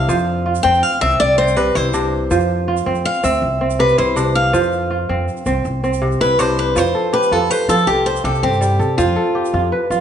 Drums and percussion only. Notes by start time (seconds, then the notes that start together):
0.09 shaker
0.19 shaker
0.55 shaker
0.74 shaker
0.92 shaker
1.11 shaker
1.48 shaker
1.94 shaker
2.31 shaker
2.40 shaker
2.77 shaker
2.95 shaker
3.14 shaker
3.24 shaker
3.70 shaker
3.89 shaker
4.17 shaker
4.54 shaker
4.63 shaker
4.72 shaker
5.28 shaker
5.37 shaker
5.46 shaker
5.65 shaker
5.84 shaker
5.93 shaker
6.12 shaker
6.39 shaker
6.58 shaker
6.76 shaker
7.23 shaker
7.69 shaker
7.78 shaker
7.88 shaker
8.07 shaker
8.16 shaker
8.25 shaker
8.35 shaker
8.53 shaker
8.62 shaker
8.81 shaker
8.99 shaker
9.45 shaker
9.91 shaker